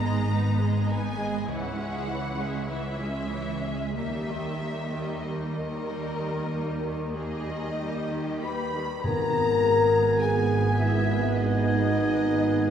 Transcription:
Already playing: G#1 G#2 A#5
0.02 G#3 B3 G#4 D#5
0.29 B3 D#4 B4
0.59 G#3 B3 G#4 D#5
0.87 B3 D#4 B4 G#5
1.16 G#3 B3 G#4 D#5
1.46 C#2 E3 E4 C#5 F#5
1.77 G#3 C#4 G#4 E5
2.07 E3 E4 C#5
2.37 G#3 C#4 G#4 E5
2.67 E3 E4 C#5 E5
2.99 G#3 C#4 G#4 E5
3.31 E3 E4 C#5
3.63 G#3 C#4 G#4 E5
3.95 D#2 G3 A#3 D#4 A#4 E5
4.28 D#3 G3 G4 D#5
4.60 G3 A#3 D#4 A#4
4.93 D#3 G3 G4 D#5
5.23 G3 A#3 A#4 D#5
5.55 D#3 G3
5.87 G3 A#3
6.19 D#3 G3
6.52 G3 A#3
6.83 D#3 G3
7.14 G3 A#3 D#4 G#4 D#5
7.47 D#3 G3
7.78 G3 A#3 G4
8.11 D#3 G3
8.42 G3 A#3 B4 B5
8.75 D#3 G3
9.04 G#1 G#2 B3 G#4 A#4 G#5 A#5
10.20 G#4 G#5
10.77 E4 E5
11.35 D#4 D#5

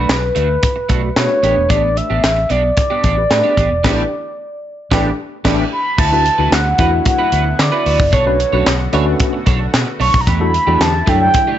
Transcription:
Already playing: A3 D4 F#4 B4
0.09 snare, clap, closed hi-hat
0.22 muted clean electric guitar stroke
0.35 D2 A3 D4 F#4, closed hi-hat
0.49 muted clean electric guitar stroke
0.62 muted clean electric guitar stroke, kick, closed hi-hat
0.76 muted clean electric guitar stroke
0.89 B1 A3 D4 F#4, kick, closed hi-hat
1.03 F#4 D5, muted clean electric guitar stroke
1.16 B2 A3 D4 F#4 B4 C#5, snare, clap, closed hi-hat
1.30 muted clean electric guitar stroke
1.43 A1 A3 B3 D4 G4 A#4, closed hi-hat
1.51 B4
1.56 E1, muted clean electric guitar stroke
1.69 A1 B3 D4 G4 D5, kick, closed hi-hat
1.83 muted clean electric guitar stroke
1.96 E5, muted clean electric guitar stroke, closed hi-hat
2.10 A1 B3 D4 G4
2.24 A1, snare, clap, closed hi-hat
2.37 muted clean electric guitar stroke
2.50 B1 B3 D4 G4 D5, closed hi-hat
2.63 muted clean electric guitar stroke
2.77 muted clean electric guitar stroke, kick, closed hi-hat
2.90 B3 D4 G4
3.03 A1 B3 D4 G4, kick, closed hi-hat
3.17 G4 B4, muted clean electric guitar stroke
3.30 A2 A3 D4 G4 B4, muted clean electric guitar stroke, snare, clap, closed hi-hat
3.43 B3 D4 G4
3.57 A1 B3 D4 G4, kick, closed hi-hat
3.71 E1, muted clean electric guitar stroke
3.84 A1 E3 A3 B3 D4 G4 B4, kick, snare, crash
4.91 A1 E3 A3 B3 D4 G4 B4, kick, snare
5.45 A1 E3 A3 B3 D4 G4 B4, kick, snare, crash
5.72 B5
5.98 D2 D3 F#3 B3 E4 F#4 B4 A5, kick, crash
6.12 A3 D4 E4 F#4 B4, muted clean electric guitar stroke
6.25 muted clean electric guitar stroke, closed hi-hat
6.38 D2 A3 D4 E4 F#4 B4
6.52 D2 F#5, muted clean electric guitar stroke, snare, clap, closed hi-hat
6.66 muted clean electric guitar stroke
6.78 E2 A3 D4 E4 F#4 B4, kick, closed hi-hat
6.92 muted clean electric guitar stroke
7.05 F#5, muted clean electric guitar stroke, kick, closed hi-hat
7.19 E4 F#4 B4
7.32 D2 E4 F#4 B4, closed hi-hat
7.45 muted clean electric guitar stroke
7.59 D3 D5, muted clean electric guitar stroke, snare, clap, closed hi-hat
7.72 E4 F#4 B4
7.85 D2 E4 F#4 B4, open hi-hat
7.99 F#1, muted clean electric guitar stroke, kick
8.12 B1 D3 A3 D4 F#4 A4 C#5, kick, closed hi-hat
8.26 A3 C#4 D4 F#4 B4, muted clean electric guitar stroke
8.39 muted clean electric guitar stroke, closed hi-hat
8.53 B1 A3 C#4 D4 F#4 A4 B4 C#5
8.66 B1, snare, clap, closed hi-hat
8.79 muted clean electric guitar stroke
8.93 D2 A3 C#4 D4 F#4 A4 B4 C#5, closed hi-hat
9.06 muted clean electric guitar stroke
9.20 muted clean electric guitar stroke, kick, closed hi-hat
9.33 muted clean electric guitar stroke
9.46 B1 D4 A4 C#5, kick, closed hi-hat
9.59 muted clean electric guitar stroke
9.74 B2, snare, clap, closed hi-hat
9.86 muted clean electric guitar stroke
10.00 B1 D4 A4 C#5 C#6, open hi-hat
10.14 B1, muted clean electric guitar stroke, kick
10.21 A#5
10.27 E2 D3 E3 A3 D4 E4 G4 B5, kick, closed hi-hat
10.40 G3 D4 E4 F#4 A4, muted clean electric guitar stroke
10.54 muted clean electric guitar stroke, closed hi-hat
10.67 E2 G3 A3 D4 E4 F#4 G4 A4
10.80 E2 D3 B3 G4 A5, snare, clap, closed hi-hat
10.94 muted clean electric guitar stroke
11.07 F#2 F#3 G3 A3 D4 E4 G4 A4 G5, kick, closed hi-hat
11.21 G5, muted clean electric guitar stroke
11.34 muted clean electric guitar stroke, kick, closed hi-hat
11.47 A3 D4 G4

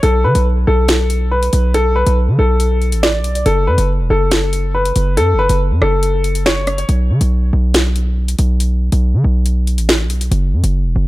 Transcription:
0.03 B1 A4, closed hi-hat
0.24 D3 B4
0.35 B1, closed hi-hat
0.67 B1 A4
0.88 finger snap, snare, closed hi-hat
1.10 closed hi-hat
1.31 B4
1.43 closed hi-hat
1.53 B1, closed hi-hat
1.74 A4, closed hi-hat
1.96 B4
2.07 B1, closed hi-hat
2.28 D3
2.39 B1 A4
2.60 closed hi-hat
2.82 closed hi-hat
2.92 A1, closed hi-hat
3.03 D5, finger snap, snare
3.19 B1
3.24 closed hi-hat
3.35 closed hi-hat
3.46 F#1 A4, closed hi-hat
3.67 F#2 B4
3.78 F#1, closed hi-hat
4.00 E1
4.10 F#1 A4
4.31 finger snap, snare, closed hi-hat
4.53 closed hi-hat
4.75 B4
4.85 closed hi-hat
4.96 F#1, closed hi-hat
5.17 F#2 A4, closed hi-hat
5.33 F#1
5.39 B4
5.49 F#1, closed hi-hat
5.71 F#2
5.82 F#1 A4, cross-stick
6.03 closed hi-hat
6.24 closed hi-hat
6.35 closed hi-hat
6.46 C#5, finger snap, snare
6.67 cross-stick, closed hi-hat
6.78 closed hi-hat
6.89 B1, closed hi-hat
7.10 D3
7.21 B1, closed hi-hat
7.53 B1
7.74 finger snap, snare, closed hi-hat
7.96 closed hi-hat
8.28 closed hi-hat
8.39 B1, closed hi-hat
8.60 closed hi-hat
8.92 B1, closed hi-hat
9.14 D3
9.24 B1
9.46 closed hi-hat
9.67 closed hi-hat
9.78 A1, closed hi-hat
9.89 finger snap, snare
10.05 B1
10.10 closed hi-hat
10.21 closed hi-hat
10.31 F#1, closed hi-hat
10.53 F#2
10.64 F#1, closed hi-hat
10.85 E1
10.96 F#1

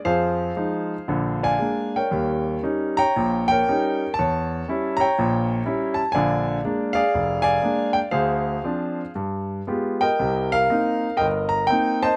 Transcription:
0.05 F2 F3 G#4 C5 F5
0.56 F3 G#3 D#4
1.08 A#1 D3
1.43 D5 F5 G#5
1.59 G#3 A#3 D4
1.96 A#4 C#5 G5
2.11 D#2 G3
2.62 G3 C#4 D#4
2.97 C#5 G5 A#5
3.16 A#1 A#2
3.48 A#4 C#5 G5
3.68 G3 C#4 D#4
4.14 A5
4.19 E2 C#5
4.68 G3 C#4 E4
4.97 C#5 A#5
5.01 G5
5.18 A#1 A#2
5.66 G3 C#4 E4
5.94 A5
6.12 A#1 D3 D5 F5 G#5
6.64 G#3 A#3 D4
6.93 G#4 D5 F5
7.14 F1
7.42 D5 F5 G#5
7.62 G#3 A#3 D4
7.93 G5
8.11 D2 G#4 C5 F5
8.64 F3 C4 D4
9.15 G2
9.67 G#3 B3 F4 G4
10.01 A#4 D#5 G5
10.19 C2 C3
10.52 A#4 F5
10.70 A#3 C4 D#4
11.17 G1 A#4 D#5 G5
11.49 A#5
11.67 A#3 C4 D#4 G5
12.03 C5 D#5 A5

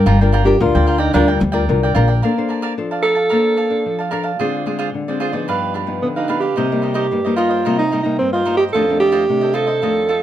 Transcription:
Already playing: D4 F4 A#4
0.06 G1 G3 F4 A#4 D5 G5
0.21 D4 F4 A#4 D5 G5
0.32 F4 A#4 D5 G5
0.45 D4 F4 G4 A#4, muted cavaquinho stroke
0.60 D2 D3 D4 F4 A#4
0.75 D2 A#4 D5 G5
0.87 F4 A#4 D5 G5
0.98 D#4 A#4 D5 G5
1.13 D2 G3 D4 F4 A#4 D5 G5
1.28 A#4 D5 G5
1.40 D2, muted cavaquinho stroke
1.52 D4 F4 A#4 D5 G5
1.68 C2 D3 D4 F4 A#4
1.83 A#4 D5 G5
1.95 A#1 D4 F4 A#4 D5 G5
2.08 A#4 D5 G5
2.22 A#3 D4 A4 A#4 C5 D5 F5 A5
2.38 D4 A4 C5
2.49 A#4 D5 F5 A5
2.62 A#4 D5 F5 A5
2.78 F3 D4 A4 C5
2.91 D5 F5 A5
3.03 A4 A#4 D5 F5 A5
3.15 D5 F5 A5
3.30 A#3 D4 A4 A#4 C5 D5 F5 A5
3.57 D5 F5 A5
3.70 D4 A4 C5
3.86 F3
3.99 D5 F5 A5
4.11 D4 A4 A#4 C5 D5 F5 A5
4.23 D5 F5 A5
4.39 D3 G#3 C4 F4 G#4 C5 D5
4.66 G#3 C4 F4 G#4 C5 D5
4.79 F4 G#4 C5 D5
4.94 D3
5.08 G#3 C4 F4 G#4 C5 D5
5.20 F4 G#4 C5 D5
5.33 F3 B3 D#4 G#4 C5 D5
5.48 G2 D4 G4 B4 F5
5.74 D4 G4 B4 F5
5.87 F3 B3 D#4
6.02 D3 B3
6.16 D#4 G4 B4 F5
6.28 F3 B3 D4 D#4 G4 B4 F5
6.40 G4 B4 F5
6.56 C3 G3 A#3 D#4 A#4 C5 D#5
6.72 G3 A#3 D#4
6.82 D#4 A#4 C5 D#5
6.94 D#4 G4 A#4 C5 D#5
7.11 G2 G3 A#3 D#4
7.25 G3 A#3 D#4 A#4 C5 D#5
7.36 D#4 F4 A#4 C5 D#5
7.49 A#4 C5 D#5
7.65 C3 G3 A#3 D#4 A#4 C5 D#5
7.79 D#4
7.91 G3 A#3 D#4 A#4 C5 D#5
8.03 G3 A#3 D#4
8.19 G2 C4
8.33 F4 A#4 C5 D#5
8.45 G3 A#3 D#4 A#4 C5 D#5
8.57 G4 A#4 C5 D#5
8.73 F2 D#3 A3 D4 F4 A4 C5 D#5
8.90 D#3 A3 D4
9.00 F4 G4 A4 C5 D#5
9.12 F4 A4 C5 D#5
9.29 C3 D#3 A3 D4
9.41 A4 C5 D#5
9.53 F4 A4 C5 D#5
9.67 A4 C5 D#5
9.82 F2 D#3 A3 D4 F4 A4 C5 D#5
10.09 F4 A4 C5 D#5

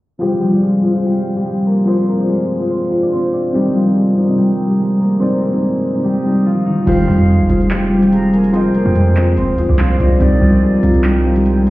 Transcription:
0.19 C3 F3 G3 C4 F4 G4 G#4 C5
0.41 F3 F4
0.51 F3 F4 G#4 D5
0.63 G#3 G#4
0.82 F3 F4 G#4 C5
0.93 F3 F4 C5
1.05 G3 G4
1.36 G3 G4
1.46 G#3 G#4
1.67 A#3 A#4
1.85 F3 C4 F4 G#4 C5
2.09 A#3 A#4
2.17 F3 F4 G#4 D5
2.28 G#3 G#4
2.59 F3 F4 G#4 C5
2.70 C4 C5
2.90 F3 F4 G#4 C5
3.03 D4 D5
3.12 C4 C5
3.33 D4 D5
3.52 C3 D#3 G3 C4 D#4 G4 D5
3.75 F3 F4
3.84 C3 C4 D#4 D5
3.96 G#3 G#4
4.15 C3 C4 D#4 D5
4.26 C3 C4 D#4 D#5
4.37 G3 G4
4.70 G3 G4
4.79 G#3 G#4
5.00 A#3 A#4
5.19 C3 C4 D#4 C5 D5
5.41 A#3 A#4
5.51 C3 C4 D#4 D5
5.62 G#3 G#4
5.93 C3 C4 D#4 D5
6.04 G3 G4
6.23 C3 C4 D#4 D5
6.46 F3 F4
6.66 D#3 D#4
6.86 F1 C3 F3 G3 C4 F4 G4 G#4 C5 F5, closed hi-hat, crash
7.07 F2 F3 F4
7.29 G#3 G#4
7.40 G#1
7.48 F1 F3 F4 G#4 C5, closed hi-hat
7.61 closed hi-hat
7.71 G3 G4, clap, closed hi-hat
7.90 F3 F4 G#4 C5
8.02 G3 G4, closed hi-hat
8.12 G#3 G#4 A#5, closed hi-hat
8.33 A#3 A#4 G#5, closed hi-hat
8.44 closed hi-hat
8.52 F3 C4 F4 G#4 C5 D#5 G5, closed hi-hat
8.75 A#3 A#4, closed hi-hat
8.86 F2
8.95 G#3 G#4, closed hi-hat
9.15 F3 F4 G#4 C5, clap, closed hi-hat
9.37 D#1 C4 C5, closed hi-hat
9.53 F2 F3
9.58 F4 G#4 C5, closed hi-hat
9.69 C2 D4 D5
9.78 C4 C5 F5, clap
9.98 C2 F3 D4 F4 G#4 C5 D5 D#5, closed hi-hat
10.19 C2 C3 D#3 G3 C4 D#4 G4 D5, closed hi-hat
10.41 C2 F3 F4
10.62 G#3 G#4
10.81 C2 C3 C4 D#4 F4, closed hi-hat
10.94 closed hi-hat
11.04 G3 G4, clap, closed hi-hat
11.23 C3 C4 D#4 F5
11.36 G3 G4, closed hi-hat
11.45 G#3 G#4 G5, closed hi-hat
11.66 A#4 F5, closed hi-hat

